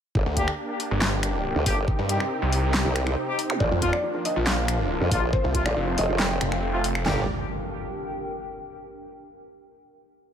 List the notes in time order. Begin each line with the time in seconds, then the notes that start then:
0.15 G1 A#3 D4 G4, kick
0.26 D2
0.37 A#3 D4 G4, kick, closed hi-hat
0.44 G4 G5, finger snap
0.74 A#4
0.80 open hi-hat
0.91 G1
1.01 snare, clap
1.23 finger snap, closed hi-hat
1.56 D2
1.66 G1 A#3 D4 G4, kick, open hi-hat
1.88 C3 C4 D#4, kick
1.99 G2
2.09 C4 D#4 G4, closed hi-hat
2.20 finger snap
2.41 C2 C5
2.52 open hi-hat
2.74 snare, clap
2.85 C2
2.96 finger snap, closed hi-hat
3.07 finger snap
3.28 C4 D#4 G4
3.39 open hi-hat
3.50 finger snap, zap
3.60 A#1 F3 A#3 D4 D5, kick
3.71 F2 F4
3.82 A#3 D4 F4, kick, closed hi-hat
3.88 F4 F5
3.93 D5, finger snap
4.04 F4 A#4
4.15 F4
4.25 D#5, open hi-hat
4.36 A#1 F4
4.47 F5, snare, clap
4.68 finger snap, closed hi-hat
5.01 F2
5.11 A#1 A#3 D4 F4, kick, open hi-hat
5.33 A3 C4 C5, kick
5.44 C2 F4
5.55 A3 C4 F4, kick, closed hi-hat
5.66 A1 D5, finger snap
5.76 F1 F4
5.87 F4
5.98 F1 D#5, open hi-hat
6.09 F1 F4 A4
6.19 G5, snare, clap
6.41 F1, finger snap, closed hi-hat
6.52 finger snap
6.74 A3 C4 F4
6.84 F1, open hi-hat
6.95 finger snap
7.06 G1 G3 A#3 D4 G4 A#4 D5 G5, snare, clap, floor tom, impact
7.12 G4
7.19 A#4
7.25 G5